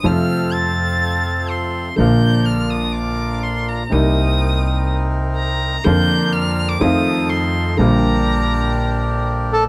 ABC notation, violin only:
X:1
M:4/4
L:1/16
Q:1/4=124
K:Bb
V:1 name="Violin"
f'4 a'8 c'4 | g'4 f'2 e'2 d'4 c'2 b2 | e'8 z4 b4 | g'4 f'3 d' e'4 c'4 |
b12 z4 |]